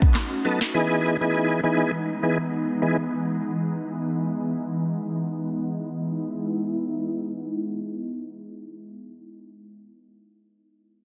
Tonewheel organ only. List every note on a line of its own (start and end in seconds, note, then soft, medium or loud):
0.45 0.59 F#3 medium
0.45 0.60 B3 medium
0.45 0.60 D#4 medium
0.45 0.60 A4 medium
0.74 1.17 E3 medium
0.74 1.17 B3 medium
0.74 1.17 D#4 medium
0.74 1.17 G#4 medium
1.21 1.60 E3 medium
1.21 1.60 B3 medium
1.21 1.61 D#4 medium
1.21 1.61 G#4 medium
1.63 1.91 E3 medium
1.63 1.91 B3 medium
1.63 1.91 D#4 medium
1.63 1.91 G#4 medium
2.23 2.38 E3 medium
2.23 2.38 B3 medium
2.23 2.38 D#4 medium
2.23 2.38 G#4 medium
2.82 2.97 E3 medium
2.82 2.97 B3 medium
2.82 2.97 D#4 medium
2.82 2.97 G#4 medium